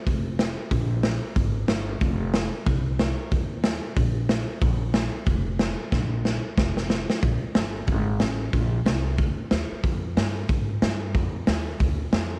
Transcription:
0.07 0.52 F1 medium
0.07 kick loud
0.07 open hi-hat medium
0.39 snare loud
0.39 open hi-hat medium
0.71 1.17 A#1 loud
0.71 kick loud
0.71 open hi-hat medium
1.03 snare loud
1.03 open hi-hat medium
1.36 1.64 G#1 medium
1.36 kick loud
1.36 open hi-hat medium
1.68 1.96 G1 medium
1.68 snare loud
1.68 open hi-hat soft
2.01 2.47 F1 loud
2.01 kick loud
2.01 open hi-hat soft
2.34 snare loud
2.34 open hi-hat medium
2.66 3.12 C2 medium
2.66 kick loud
2.66 open hi-hat soft
2.99 snare loud
2.99 open hi-hat soft
3.31 3.77 D#2 medium
3.31 kick loud
3.31 open hi-hat medium
3.64 snare loud
3.64 open hi-hat medium
3.96 4.42 A#1 loud
3.96 kick loud
3.96 open hi-hat medium
4.29 snare loud
4.29 open hi-hat medium
4.61 5.07 A#1 loud
4.61 kick loud
4.61 open hi-hat soft
4.94 snare loud
4.94 open hi-hat medium
5.26 5.72 F1 medium
5.26 kick loud
5.26 open hi-hat soft
5.59 snare loud
5.59 open hi-hat soft
5.92 6.38 A#1 medium
5.92 kick loud
5.92 snare medium
6.25 snare medium
6.58 7.03 F1 medium
6.58 kick loud
6.58 snare medium
6.77 snare medium
6.90 snare medium
7.10 snare medium
7.22 7.41 A#1 medium
7.22 kick loud
7.22 open hi-hat soft
7.42 muted upright bass stroke soft
7.55 7.87 G1 medium
7.55 snare loud
7.55 open hi-hat soft
7.87 8.19 G#1 medium
7.87 kick loud
7.87 open hi-hat soft
8.20 8.52 A1 medium
8.20 snare loud
8.20 open hi-hat medium
8.53 8.85 A#1 medium
8.53 kick medium
8.53 open hi-hat soft
8.85 9.17 C2 medium
8.85 snare loud
8.85 open hi-hat medium
9.18 9.50 D2 medium
9.18 kick loud
9.18 open hi-hat soft
9.51 9.70 D#2 medium
9.51 snare loud
9.51 open hi-hat medium
9.71 muted upright bass stroke soft
9.83 10.15 F2 medium
9.83 kick loud
9.83 open hi-hat soft
10.17 10.48 G2 loud
10.17 snare loud
10.17 open hi-hat soft
10.49 10.81 G#2 medium
10.49 kick loud
10.49 open hi-hat soft
10.82 11.14 G2 medium
10.82 snare loud
10.82 open hi-hat medium
11.14 11.46 F2 medium
11.14 kick loud
11.14 open hi-hat soft
11.47 11.79 D#2 medium
11.47 snare loud
11.47 open hi-hat medium
11.80 12.12 D2 medium
11.80 kick loud
11.80 open hi-hat medium
12.12 12.39 F2 medium
12.12 snare loud
12.12 open hi-hat soft

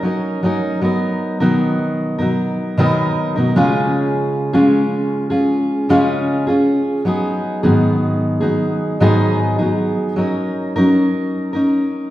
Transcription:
0.03 0.42 F#3 medium
0.03 0.43 C#4 medium
0.03 0.44 D#4 medium
0.03 0.44 A#4 medium
0.43 0.80 F#3 medium
0.43 0.82 C#4 medium
0.43 0.82 D#4 medium
0.43 0.84 A#4 medium
0.81 1.40 F#3 medium
0.81 1.40 B3 medium
0.81 1.40 D#4 medium
0.81 1.39 A#4 medium
1.40 2.20 B2 medium
1.40 2.19 D#3 medium
1.40 2.19 F#3 medium
1.40 2.19 B3 medium
1.40 2.18 D#4 medium
1.40 2.17 A#4 medium
2.18 2.77 F#3 soft
2.18 2.78 B3 medium
2.18 2.78 D#4 soft
2.18 2.77 A#4 medium
2.77 3.36 B2 medium
2.77 3.36 D#3 medium
2.77 3.36 F#3 medium
2.77 3.37 B3 loud
2.77 3.36 D#4 medium
2.77 3.34 A#4 medium
3.36 3.56 F#3 soft
3.36 3.56 B3 soft
3.36 3.56 D#4 medium
3.36 3.55 A#4 medium
3.56 4.53 C#3 medium
3.56 4.55 G#3 medium
3.56 4.53 C#4 medium
3.56 4.53 F4 medium
3.56 4.53 G#4 medium
4.53 5.32 C#3 medium
4.53 5.89 G#3 medium
4.53 5.32 C#4 medium
4.53 5.30 F4 medium
4.53 5.30 G#4 medium
5.30 5.89 C#4 soft
5.30 5.89 F4 medium
5.30 5.89 G#4 medium
5.89 6.48 C#3 medium
5.89 6.48 G#3 medium
5.89 6.48 C#4 loud
5.89 6.47 F4 medium
5.89 6.46 G#4 loud
6.47 7.05 C#4 soft
6.47 7.06 F4 medium
6.47 7.06 G#4 medium
7.05 7.63 F#3 medium
7.05 7.63 B3 medium
7.05 7.63 D#4 medium
7.05 7.62 G#4 medium
7.63 8.43 G#2 medium
7.63 9.00 D#3 medium
7.63 8.43 F#3 medium
7.63 8.41 B3 medium
7.63 8.41 D#4 medium
7.63 8.39 G#4 medium
8.41 9.00 F#3 soft
8.41 9.00 B3 medium
8.41 9.00 D#4 medium
8.41 9.00 G#4 medium
9.00 9.59 G#2 medium
9.00 9.59 D#3 medium
9.00 9.59 F#3 medium
9.00 9.59 B3 loud
9.00 9.58 D#4 medium
9.00 9.57 G#4 loud
9.58 10.15 F#3 soft
9.58 10.17 B3 soft
9.58 10.17 D#4 medium
9.58 10.17 G#4 medium
10.16 10.75 F#3 medium
10.16 10.76 C#4 medium
10.16 10.75 D#4 medium
10.16 10.75 A#4 medium
10.76 12.10 F#3 medium
10.76 11.55 C#4 medium
10.76 11.54 D#4 medium
10.76 11.52 A#4 medium
11.53 12.10 C#4 soft
11.53 12.10 D#4 medium
11.53 12.10 A#4 medium

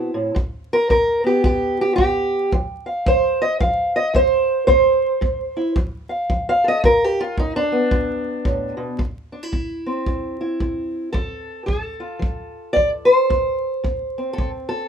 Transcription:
0.00 0.14 B2 medium
0.00 0.35 C4 medium
0.00 0.34 E4 medium
0.14 0.34 A2 medium
0.35 0.85 G2 medium
0.35 kick medium
0.73 0.89 A#4 loud
0.89 1.40 G2 medium
0.89 1.26 A#4 loud
0.89 kick medium
1.24 2.50 B3 medium
1.24 1.44 G4 medium
1.44 1.94 G2 medium
1.44 1.80 G4 loud
1.44 kick medium
1.81 1.94 G4 loud
1.96 2.48 G2 medium
1.96 2.51 G4 loud
1.96 kick medium
2.52 3.02 F3 medium
2.52 kick medium
2.86 3.40 F5 soft
3.06 3.56 F3 medium
3.06 3.40 C5 loud
3.06 kick medium
3.42 3.60 D#5 loud
3.60 4.10 F3 medium
3.60 3.94 F5 medium
3.60 kick medium
3.96 4.15 D#5 medium
4.14 4.64 F3 medium
4.14 4.66 C5 loud
4.14 kick medium
4.67 5.18 C3 medium
4.67 5.75 C5 loud
4.67 kick medium
5.21 5.71 C3 medium
5.21 kick medium
5.57 5.74 E4 medium
5.76 6.26 F3 medium
5.76 kick medium
6.09 6.48 F5 medium
6.30 6.79 F3 medium
6.30 kick medium
6.49 6.66 F5 loud
6.64 6.82 A4 medium
6.64 6.85 D#5 loud
6.83 7.33 G2 medium
6.83 7.04 A#4 loud
6.83 kick medium
7.04 7.21 G4 medium
7.20 7.38 F4 loud
7.37 7.87 G2 medium
7.37 7.56 D#4 loud
7.37 kick medium
7.56 8.99 D4 loud
7.72 8.97 B3 medium
7.91 8.41 G2 medium
7.91 kick medium
8.45 8.77 A2 medium
8.45 kick medium
8.77 8.98 B2 medium
8.98 9.48 C3 medium
8.98 kick medium
9.32 9.43 D4 medium
9.43 10.39 E4 soft
9.52 10.02 C3 medium
9.52 kick medium
9.86 12.00 C4 medium
10.06 10.57 C3 medium
10.06 kick medium
10.41 11.12 E4 medium
10.60 11.10 C3 medium
10.60 kick medium
11.12 11.64 F3 medium
11.12 11.65 A4 loud
11.12 kick medium
11.66 12.17 F3 medium
11.66 13.29 A4 medium
11.66 kick medium
12.00 13.27 F4 soft
12.19 12.71 F3 medium
12.19 kick medium
12.73 13.26 F3 medium
12.73 12.89 D5 loud
12.73 kick medium
13.05 14.33 C5 loud
13.30 13.80 C3 medium
13.30 kick medium
13.84 14.33 C3 medium
13.84 kick medium
14.18 14.88 C4 medium
14.33 14.49 A4 loud
14.38 14.88 C3 medium
14.38 kick medium
14.69 14.88 A4 loud

